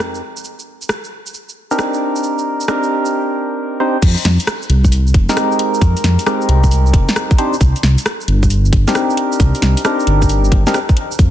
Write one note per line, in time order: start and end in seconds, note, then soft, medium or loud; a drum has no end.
0.00 0.21 F2 medium
0.00 0.21 G#3 medium
0.00 0.21 C4 medium
0.00 0.21 D#4 medium
0.00 0.21 G4 medium
0.00 0.21 A#4 medium
0.00 cross-stick loud
0.00 cabasa soft
0.15 cabasa soft
0.37 cabasa medium
0.44 cabasa soft
0.59 cabasa soft
0.82 cabasa medium
0.89 cross-stick loud
0.89 cabasa soft
1.04 cabasa soft
1.27 cabasa medium
1.34 cabasa soft
1.49 cabasa soft
1.71 2.66 C4 medium
1.71 2.66 D4 medium
1.71 2.66 D#4 medium
1.71 2.66 G4 medium
1.71 2.66 A#4 medium
1.71 cabasa medium
1.79 cross-stick loud
1.79 cabasa soft
1.94 cabasa soft
2.16 cabasa medium
2.23 cabasa soft
2.38 cabasa soft
2.61 cabasa medium
2.68 3.79 C4 medium
2.68 3.79 D4 medium
2.68 3.79 D#4 medium
2.68 3.79 G4 medium
2.68 3.79 A#4 medium
2.68 cross-stick loud
2.68 cabasa soft
2.83 cabasa soft
3.06 cabasa medium
3.80 3.97 C4 medium
3.80 3.97 D4 medium
3.80 3.97 D#4 medium
3.80 3.97 G4 medium
3.80 3.97 C5 medium
4.02 4.16 F2 loud
4.02 kick loud
4.02 closed hi-hat medium
4.02 crash loud
4.02 cabasa soft
4.17 closed hi-hat soft
4.17 cabasa soft
4.25 4.38 F2 medium
4.25 snare medium
4.25 closed hi-hat loud
4.40 closed hi-hat medium
4.40 cabasa medium
4.47 cross-stick loud
4.47 closed hi-hat medium
4.47 cabasa medium
4.62 cabasa soft
4.70 5.13 C2 medium
4.70 closed hi-hat loud
4.85 kick medium
4.85 cabasa medium
4.92 closed hi-hat medium
4.92 cabasa soft
5.07 cabasa soft
5.14 5.28 F1 medium
5.14 kick loud
5.14 closed hi-hat loud
5.29 6.25 G#3 medium
5.29 6.25 C4 medium
5.29 6.25 D#4 medium
5.29 6.25 G4 medium
5.29 6.25 A#4 medium
5.29 snare medium
5.29 cabasa medium
5.37 cross-stick loud
5.37 closed hi-hat medium
5.37 cabasa medium
5.52 cabasa soft
5.59 closed hi-hat loud
5.74 cabasa medium
5.81 5.95 F2 loud
5.81 kick loud
5.81 closed hi-hat medium
5.81 cabasa soft
5.97 closed hi-hat soft
5.97 cabasa soft
6.04 6.17 F2 medium
6.04 snare medium
6.04 closed hi-hat loud
6.19 closed hi-hat medium
6.19 cabasa medium
6.26 7.37 G#3 medium
6.26 7.37 C4 medium
6.26 7.37 D#4 medium
6.26 7.37 G4 medium
6.26 7.37 A#4 medium
6.26 cross-stick loud
6.26 closed hi-hat medium
6.26 cabasa medium
6.41 cabasa soft
6.49 6.92 C2 medium
6.49 closed hi-hat loud
6.64 kick medium
6.64 cabasa medium
6.71 closed hi-hat medium
6.71 cabasa soft
6.86 cabasa soft
6.93 7.07 F1 medium
6.93 kick loud
6.93 closed hi-hat loud
7.09 snare medium
7.09 cabasa medium
7.16 cross-stick loud
7.16 closed hi-hat medium
7.16 cabasa soft
7.31 kick loud
7.31 cabasa soft
7.38 7.56 C4 medium
7.38 7.56 D4 medium
7.38 7.56 D#4 medium
7.38 7.56 G4 medium
7.38 7.56 C5 medium
7.38 closed hi-hat loud
7.54 cabasa medium
7.61 7.74 C2 loud
7.61 kick loud
7.61 closed hi-hat medium
7.61 cabasa medium
7.76 closed hi-hat soft
7.76 cabasa soft
7.83 7.96 C2 medium
7.83 snare medium
7.83 closed hi-hat loud
7.98 closed hi-hat medium
7.98 cabasa medium
8.06 cross-stick loud
8.06 closed hi-hat medium
8.06 cabasa medium
8.21 cabasa soft
8.28 8.71 G1 medium
8.28 closed hi-hat loud
8.43 kick medium
8.43 cabasa medium
8.50 closed hi-hat medium
8.50 cabasa medium
8.65 cabasa soft
8.73 8.86 G1 medium
8.73 kick loud
8.73 closed hi-hat loud
8.88 9.83 C4 medium
8.88 9.83 D4 medium
8.88 9.83 D#4 medium
8.88 9.83 G4 medium
8.88 9.83 A#4 medium
8.88 snare medium
8.88 cabasa medium
8.95 cross-stick loud
8.95 closed hi-hat medium
8.95 cabasa medium
9.10 cabasa soft
9.17 closed hi-hat loud
9.32 cabasa medium
9.40 9.53 C2 loud
9.40 kick loud
9.40 closed hi-hat medium
9.40 cabasa medium
9.55 closed hi-hat soft
9.55 cabasa soft
9.62 9.76 C2 medium
9.62 snare medium
9.62 closed hi-hat loud
9.77 closed hi-hat medium
9.77 cabasa medium
9.85 10.64 C4 medium
9.85 10.64 D4 medium
9.85 10.64 D#4 medium
9.85 10.64 G4 medium
9.85 10.64 A#4 medium
9.85 cross-stick loud
9.85 closed hi-hat medium
9.85 cabasa medium
10.00 cabasa soft
10.07 10.50 G1 medium
10.07 closed hi-hat loud
10.22 kick medium
10.22 cabasa medium
10.29 closed hi-hat medium
10.29 cabasa medium
10.44 cabasa soft
10.52 10.65 G1 medium
10.52 kick loud
10.52 closed hi-hat loud
10.67 10.79 C4 medium
10.67 10.79 D4 medium
10.67 10.79 D#4 medium
10.67 10.79 G4 medium
10.67 10.79 A#4 loud
10.67 snare medium
10.67 cabasa medium
10.74 cross-stick loud
10.74 closed hi-hat medium
10.74 cabasa medium
10.89 kick loud
10.89 cabasa soft
10.97 closed hi-hat loud
11.12 cabasa medium
11.19 11.30 F2 loud
11.19 kick loud
11.19 closed hi-hat medium
11.19 cabasa medium